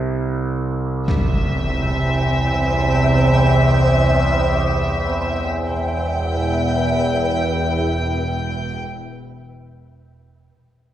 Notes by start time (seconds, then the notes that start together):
Already playing: C2 C3 C4
1.08 C2 E2 C3 C5 E5 G5, impact
5.69 E1 E2 B4 E5 G5